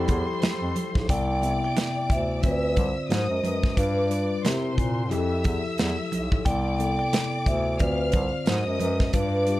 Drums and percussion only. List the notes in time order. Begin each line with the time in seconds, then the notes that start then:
0.08 kick, closed hi-hat, muted conga, low conga
0.42 snare, closed hi-hat, high conga
0.75 closed hi-hat, high conga
0.95 kick, snare
1.09 kick, closed hi-hat
1.42 closed hi-hat, muted conga
1.77 snare, closed hi-hat, high conga
2.10 kick, closed hi-hat
2.43 kick, closed hi-hat, muted conga
2.76 kick, closed hi-hat, muted conga
3.10 snare, closed hi-hat, high conga
3.43 closed hi-hat, high conga
3.63 kick, snare
3.77 kick, closed hi-hat
4.11 closed hi-hat
4.45 snare, closed hi-hat, high conga
4.78 kick, closed hi-hat
5.11 closed hi-hat, muted conga
5.44 kick, closed hi-hat, muted conga, low conga
5.78 snare, closed hi-hat, high conga
6.12 closed hi-hat, high conga
6.32 kick
6.46 kick, closed hi-hat
6.78 closed hi-hat, muted conga
7.13 snare, closed hi-hat, high conga
7.46 kick, closed hi-hat
7.79 kick, closed hi-hat, muted conga
8.12 kick, closed hi-hat, muted conga
8.46 snare, closed hi-hat, high conga
8.80 closed hi-hat, high conga
9.00 kick, snare
9.13 kick, closed hi-hat
9.47 closed hi-hat